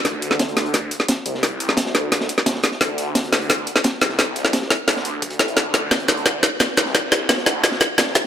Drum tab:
HH |x-x-xxxxx-x-x-x-|x-x-x-x-x-x-x-x-|x-x-xxxxx-x-x-x-|x-x-x-x-x-x-xxxx|
SD |o--oo-o-o--oo--o|o--oooo-oo-ooooo|o---o-o-o--oo-oo|o--oooo-oo----o-|
BD |o---o---o---o---|o---o---o---o---|o---o---o---o---|o---o---o---o---|

HH |x-x-xxxxx-x-x-x-|x-x-x-x-x-x-x-x-|
SD |o-o-o-o-o-o-o-oo|o-o-ooo-ooo-ooo-|
BD |o---o---o---o---|o---o---o---o---|